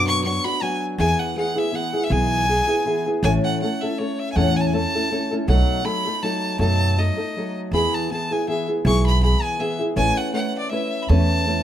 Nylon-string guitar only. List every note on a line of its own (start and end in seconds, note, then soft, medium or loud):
0.00 0.25 B2 medium
0.00 0.23 F#3 medium
0.00 0.25 B3 medium
0.00 0.25 D4 medium
0.00 0.25 F#4 medium
0.25 0.45 F#3 soft
0.25 0.46 B3 medium
0.25 0.45 D4 medium
0.25 0.44 F#4 medium
0.45 0.61 B3 soft
0.45 0.62 D4 soft
0.45 0.62 F#4 medium
0.61 0.98 F#3 medium
0.61 0.99 B3 medium
0.61 0.99 D4 medium
0.61 0.99 F#4 medium
0.99 1.36 E3 medium
0.99 1.36 B3 medium
0.99 1.37 E4 medium
0.99 1.36 G#4 medium
1.36 1.57 E3 medium
1.36 1.56 B3 medium
1.36 1.55 E4 soft
1.36 1.54 G#4 medium
1.55 1.72 B3 soft
1.55 1.72 E4 medium
1.55 1.72 G#4 medium
1.72 1.93 E3 medium
1.72 1.93 B3 medium
1.72 1.93 E4 medium
1.72 1.92 G#4 medium
1.93 2.09 B3 soft
1.93 2.09 E4 soft
1.93 2.09 G#4 medium
2.10 2.47 E3 medium
2.10 2.46 B3 medium
2.10 2.48 E4 medium
2.10 2.48 G#4 medium
2.47 2.68 E3 soft
2.47 2.68 B3 soft
2.47 2.67 E4 soft
2.47 2.66 G#4 medium
2.68 2.84 B3 soft
2.68 2.85 E4 soft
2.68 2.85 G#4 medium
2.86 3.06 E3 medium
2.86 3.06 B3 medium
2.86 3.06 E4 medium
2.86 3.05 G#4 medium
3.06 3.24 B3 soft
3.06 3.24 E4 soft
3.06 3.24 G#4 medium
3.24 3.62 A2 medium
3.24 3.62 E3 medium
3.24 3.62 A3 medium
3.24 3.62 C#4 medium
3.24 3.62 E4 medium
3.24 3.64 A4 medium
3.62 3.82 A3 soft
3.62 3.83 C#4 soft
3.62 3.83 E4 soft
3.62 3.82 A4 medium
3.83 3.98 A3 soft
3.83 3.99 C#4 soft
3.83 4.00 E4 soft
3.83 4.00 A4 soft
3.99 4.36 A3 medium
3.99 4.35 C#4 medium
3.99 4.36 E4 medium
3.99 4.37 A4 medium
4.36 4.74 A2 medium
4.36 4.74 E3 medium
4.36 4.73 A3 medium
4.36 4.73 C#4 loud
4.36 4.74 E4 medium
4.36 4.75 A4 medium
4.74 4.94 A3 medium
4.74 4.95 C#4 medium
4.74 4.95 E4 medium
4.74 4.94 A4 medium
4.95 5.10 A3 soft
4.95 5.10 C#4 medium
4.95 5.11 E4 soft
4.95 5.11 A4 medium
5.11 5.31 A3 medium
5.11 5.32 C#4 medium
5.11 5.31 E4 medium
5.11 5.30 A4 medium
5.31 5.48 A3 medium
5.31 5.48 C#4 medium
5.31 5.49 E4 medium
5.31 5.48 A4 medium
5.49 5.86 B2 medium
5.49 5.83 F#3 medium
5.49 5.83 A3 medium
5.49 5.83 D#4 medium
5.49 5.84 A4 medium
5.84 6.05 F#3 medium
5.84 6.05 A3 medium
5.84 6.05 D#4 medium
5.84 6.05 A4 medium
6.06 6.23 A3 soft
6.06 6.23 D#4 soft
6.06 6.23 A4 medium
6.23 6.58 F#3 medium
6.23 6.59 A3 medium
6.23 6.59 D#4 medium
6.23 6.59 A4 medium
6.59 6.97 B2 medium
6.59 6.96 F#3 medium
6.59 6.97 A3 medium
6.59 6.97 D#4 medium
6.59 6.98 A4 medium
6.98 7.18 F#3 soft
6.98 7.18 A3 medium
6.98 7.18 D#4 soft
6.98 7.17 A4 medium
7.18 7.36 A3 soft
7.18 7.36 D#4 soft
7.18 7.35 A4 soft
7.37 7.73 F#3 medium
7.37 7.73 A3 medium
7.37 7.73 D#4 medium
7.37 7.74 A4 medium
7.73 8.10 E3 medium
7.73 8.11 B3 medium
7.73 8.11 E4 medium
7.73 8.11 G#4 medium
8.10 8.31 E3 soft
8.10 8.32 B3 medium
8.10 8.31 E4 medium
8.10 8.30 G#4 medium
8.31 8.47 B3 soft
8.31 8.47 E4 medium
8.31 8.48 G#4 soft
8.48 8.68 E3 medium
8.48 8.69 B3 medium
8.48 8.67 E4 medium
8.48 8.67 G#4 medium
8.68 8.84 B3 soft
8.68 8.85 E4 soft
8.68 8.85 G#4 soft
8.85 9.22 E3 medium
8.85 9.22 B3 medium
8.85 9.23 E4 medium
8.85 9.22 G#4 medium
9.22 9.59 E3 soft
9.22 9.60 B3 medium
9.22 9.60 E4 medium
9.22 9.60 G#4 medium
9.59 9.80 E3 medium
9.59 9.80 B3 medium
9.59 9.79 E4 medium
9.59 9.78 G#4 medium
9.79 9.96 B3 soft
9.79 9.95 E4 medium
9.79 9.97 G#4 soft
9.96 10.32 A3 medium
9.96 10.34 C#4 medium
9.96 10.34 E4 medium
9.96 10.34 B4 medium
10.34 10.70 A3 medium
10.34 10.72 C#4 medium
10.34 10.72 E4 medium
10.34 10.72 B4 medium
10.71 11.08 A3 medium
10.71 11.10 C#4 medium
10.71 11.10 E4 medium
10.71 11.09 B4 medium
11.10 11.46 A3 medium
11.10 11.47 C#4 medium
11.10 11.47 E4 medium
11.10 11.47 B4 loud
11.47 11.63 A3 soft
11.47 11.63 C#4 medium
11.47 11.63 E4 medium
11.47 11.63 B4 soft